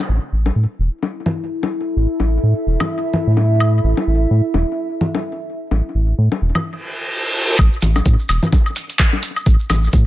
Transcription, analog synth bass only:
0.09 A1
0.32 A1
0.56 A2
0.79 E1
1.96 A1
2.20 A1
2.43 A2
2.67 E1
3.27 A2
3.84 A1
4.07 A1
4.31 A2
4.54 E1
5.71 A1
5.95 A1
6.18 A2
6.42 E1
7.59 A1
7.82 A1
8.06 A2
8.29 E1
9.46 A1
9.70 A1
9.93 A2

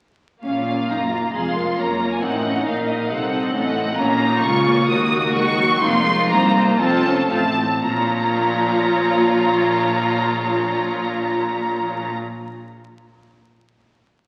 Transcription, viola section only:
0.43 A#3 C#4
0.67 C#4
0.90 D#4
1.12 F4
1.34 G#3 F4
1.79 A#3
2.22 C4 D#4
2.45 C#4
2.66 D#4
3.10 C4
3.52 C#4
3.75 C4
3.97 A#3 C#4
4.20 D#4
4.43 G#3 F4
4.65 A#3
4.88 A#3 F#4
5.10 F#4
5.32 G#3
5.57 F#3
5.81 A#3 D#4
6.05 G#3
6.30 A#3 D#4
6.79 C4 F4
7.05 C#4
7.30 C4 F4
7.84 F3 F4

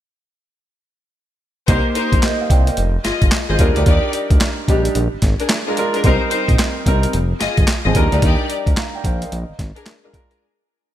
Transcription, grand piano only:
1.68 A#3 D#4 G4 C5
2.24 A#4 D#5
2.41 C5 F5
2.51 D5 G5
2.68 A#4 D#5
3.49 G#3 D#4 F4 C5
3.60 G3 D4 D#4 A#4
4.68 G3 D4 D#4 G4
5.67 G#3 D4 F4 A#4
5.77 G#3 D4 F4 A#4
6.05 G3 C4 D#4 A#4
6.87 G3 C4 D#4 A#4
7.86 F3 C4 D#4 G#4
7.95 G3 D4 D#4 A#4
8.78 F5 A#5
8.95 D5 G5
9.06 C5 F5
9.22 A#4 D#5
10.04 G#3 D4 F4 A#4
10.13 G#3 D4 F4 A#4

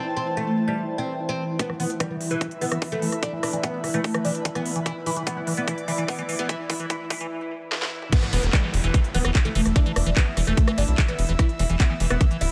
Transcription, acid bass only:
1.70 E3
1.80 E3
2.00 E3
2.10 E3
2.31 E3
2.41 E3
2.61 E3
2.72 E3
2.92 E3
3.02 E3
3.23 E3
3.33 E3
3.53 E3
3.63 E3
3.84 E3
3.94 E3
4.15 E3
4.25 E3
4.45 E3
4.55 E3
4.76 E3
4.86 E3
5.06 E3
5.17 E3
5.37 E3
5.47 E3
5.68 E3
5.88 E3
5.98 E3
6.19 E3
6.29 E3
6.49 E3
6.70 E3
6.80 E3
6.90 E3
7.10 E3
7.21 E3
8.23 E3
8.33 E3
8.53 E3
8.63 E3
8.84 E3
8.94 E3
9.14 E3
9.25 E3
9.45 E3
9.55 E3
9.76 E3
9.86 E3
10.06 E3
10.17 E3
10.37 E3
10.47 E3
10.68 E3
10.78 E3
10.98 E3
11.08 E3
11.29 E3
11.39 E3
11.59 E3
11.70 E3
11.90 E3
12.00 E3
12.21 E3
12.31 E3

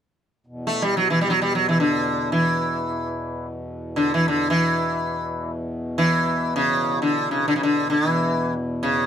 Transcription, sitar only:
0.67 A3
0.82 G3
0.97 F#3
1.10 E3
1.21 G3
1.28 F#3 G3
1.42 G3
1.55 F#3
1.69 E3
1.80 D3
2.32 E3
3.96 D3
4.14 E3
4.28 D3
4.50 E3
5.98 E3
6.56 C#3
7.02 D3
7.31 C#3
7.48 D3
7.56 C#3
7.63 D3
7.90 D3
8.09 E3
8.83 C#3

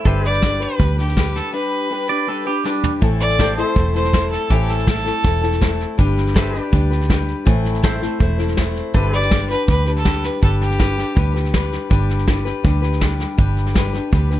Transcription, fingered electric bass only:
0.05 G1
0.80 D2
3.02 A1
3.76 E1
4.50 A1
5.24 E1
5.99 G1
6.73 D2
7.47 A1
8.20 E1
8.94 G1
9.68 D2
10.43 G1
11.17 D2
11.91 G1
12.65 D2
13.38 G1
14.13 D2

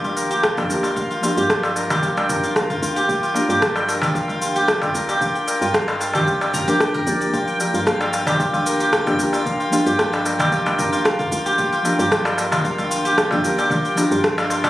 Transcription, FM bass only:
0.04 F1
0.70 D2
0.97 G1
1.37 G2
2.17 F1
2.82 D2
3.09 G1
3.49 G2
4.29 F1
4.95 D2
5.21 G1
5.61 G2
6.54 D2
6.68 G1
7.07 D2
7.33 G1
7.74 G2
8.53 F1
9.19 D2
9.46 G1
9.86 G2
10.66 F1
11.32 D2
11.58 G1
11.99 G2
12.79 F1
13.44 D2
13.71 G1
14.11 G2

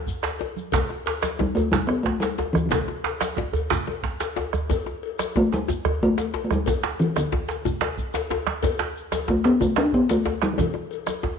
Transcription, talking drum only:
1.41 G3
1.55 A3
1.72 G3
1.87 B3
2.03 A3
2.20 G3
2.53 E3
2.66 D3 E3
5.37 A3
5.54 G3
6.03 A3
6.44 A3
6.53 G3
7.00 E3
7.18 D3
9.30 A3
9.45 B3
9.61 A3
9.78 D4
9.94 B3
10.11 A3
10.43 G3
10.53 G3
10.59 E3

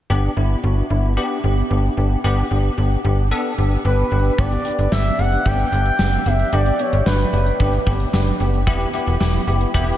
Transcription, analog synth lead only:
3.85 B4
4.39 D5
4.92 E5
5.19 F#5
5.46 G5
6.26 E5
6.53 D5
6.80 C#5
7.06 B4

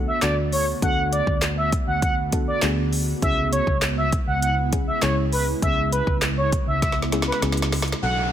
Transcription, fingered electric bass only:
Already playing: D2
0.22 D2
0.82 D2
1.27 D2
1.87 D2
2.62 D2
3.22 C#2
3.67 C#2
4.27 C#2
5.02 C#2
5.62 C#2
6.07 C#2
6.67 C#2
7.42 C#2
8.02 B1

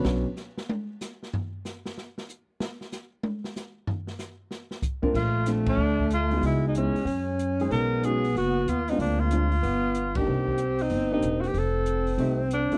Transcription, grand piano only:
Already playing: F#3 B3 C#4 D4 B4
5.02 A#3 C4 D4 F4 A#4
5.46 A3 C4 D4 F4
6.31 G#3 B3 D#4 F#4
6.75 G#3 B3 D#4 E4
7.60 G#3 C#4 D#4 G#4
8.04 G#3 C#4 D#4 F#4
8.89 G#3 C4 D4 F4
9.32 G#3 C4 D4 F4
10.17 A#3 D4 D#4 G4
11.11 A#3 D4 D#4 G4
12.19 A3 C4 D#4 G4
12.72 A3 C4 D4 F4

